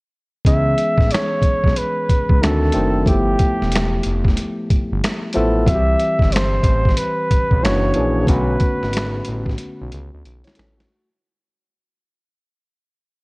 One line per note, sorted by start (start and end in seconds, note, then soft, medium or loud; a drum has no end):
0.45 0.74 C#2 medium
0.45 1.53 E3 medium
0.45 1.54 G#3 medium
0.45 1.54 B3 medium
0.45 1.54 C#4 medium
0.45 1.54 G#4 medium
0.45 1.14 E5 loud
0.45 kick medium
0.45 closed hi-hat medium
0.78 closed hi-hat medium
0.98 1.09 A1 medium
0.98 kick medium
0.98 snare soft
1.11 1.79 C#5 medium
1.11 snare loud
1.11 closed hi-hat medium
1.15 finger snap medium
1.42 1.51 B1 medium
1.42 kick medium
1.42 closed hi-hat medium
1.64 1.75 B1 medium
1.64 kick medium
1.64 snare soft
1.76 2.44 B4 medium
1.76 closed hi-hat medium
2.09 2.18 C#2 soft
2.09 kick medium
2.09 closed hi-hat medium
2.29 2.40 C#2 medium
2.29 kick medium
2.41 2.71 D2 medium
2.41 2.69 D#3 medium
2.41 2.69 A3 medium
2.41 2.70 C4 medium
2.41 2.70 D4 medium
2.41 2.70 F#4 medium
2.41 3.07 A4 medium
2.41 finger snap medium
2.41 snare loud
2.41 closed hi-hat medium
2.72 3.03 F#1 medium
2.72 3.02 D#3 medium
2.72 3.02 A3 medium
2.72 3.02 C4 medium
2.72 3.02 D4 medium
2.72 3.03 A4 medium
2.72 closed hi-hat medium
3.06 3.35 G1 medium
3.06 4.14 F3 medium
3.06 4.14 A3 medium
3.06 3.14 A#3 soft
3.06 4.15 E4 medium
3.06 4.15 G4 medium
3.06 4.34 G4 medium
3.06 kick medium
3.06 closed hi-hat medium
3.13 4.18 B3 medium
3.39 kick medium
3.39 closed hi-hat medium
3.62 4.00 E1 medium
3.62 snare soft
3.71 snare loud
3.71 closed hi-hat medium
3.76 finger snap medium
4.03 4.34 F1 loud
4.03 closed hi-hat medium
4.24 kick medium
4.24 snare soft
4.37 closed hi-hat medium
4.70 4.79 G1 soft
4.70 kick medium
4.70 closed hi-hat medium
4.92 5.01 G1 medium
5.04 finger snap medium
5.04 snare medium
5.04 closed hi-hat medium
5.33 5.64 A1 medium
5.33 5.62 F3 medium
5.33 5.63 A3 medium
5.33 5.63 B3 medium
5.33 5.63 E4 medium
5.33 5.63 A4 medium
5.33 closed hi-hat medium
5.66 5.96 C2 medium
5.66 6.75 E3 medium
5.66 6.75 G3 medium
5.66 5.76 F#4 medium
5.66 6.34 E5 loud
5.66 kick medium
5.66 closed hi-hat medium
5.75 6.79 G4 medium
5.99 closed hi-hat medium
6.19 6.59 G1 medium
6.19 kick medium
6.19 snare soft
6.32 6.99 C5 medium
6.32 snare loud
6.32 closed hi-hat medium
6.37 finger snap medium
6.63 6.93 A1 loud
6.63 kick medium
6.63 closed hi-hat medium
6.85 kick medium
6.85 snare soft
6.97 7.65 B4 medium
6.97 closed hi-hat medium
7.31 7.40 B1 medium
7.31 kick medium
7.31 closed hi-hat medium
7.51 7.66 B1 medium
7.51 kick medium
7.62 7.92 F#1 loud
7.62 7.91 E3 medium
7.62 7.91 A#3 medium
7.62 7.91 C#4 medium
7.62 7.91 D4 medium
7.62 7.92 F#4 medium
7.62 8.28 C#5 loud
7.62 finger snap medium
7.62 snare loud
7.62 closed hi-hat medium
7.94 8.25 A#1 medium
7.94 8.23 E3 medium
7.94 8.23 A#3 medium
7.94 8.24 C#4 medium
7.94 8.24 D4 medium
7.94 8.24 G#4 medium
7.94 closed hi-hat medium
8.27 8.57 B1 loud
8.27 9.35 D3 medium
8.27 9.36 A3 medium
8.27 9.36 B3 medium
8.27 9.36 C#4 medium
8.27 9.37 F#4 medium
8.27 9.55 B4 medium
8.27 kick medium
8.27 closed hi-hat medium
8.60 kick medium
8.60 closed hi-hat medium
8.83 9.21 G#1 medium
8.83 snare soft
8.93 snare loud
8.93 closed hi-hat medium
8.98 finger snap medium
9.25 9.55 A1 loud
9.25 closed hi-hat medium
9.46 kick medium
9.46 snare soft
9.58 closed hi-hat medium
9.82 9.91 B1 medium
9.92 10.11 C#2 medium
9.92 closed hi-hat medium
10.14 10.23 D2 medium
10.26 10.43 B1 medium
10.26 closed hi-hat medium
10.44 10.56 E4 medium
10.44 10.56 C#5 medium
10.44 snare medium
10.44 closed hi-hat soft
10.55 10.86 A1 medium
10.55 10.76 C#4 medium
10.55 10.76 A4 medium
10.55 closed hi-hat medium
10.59 snare medium
10.77 11.08 A3 medium
10.77 11.08 F#4 medium
10.77 snare medium
10.77 closed hi-hat soft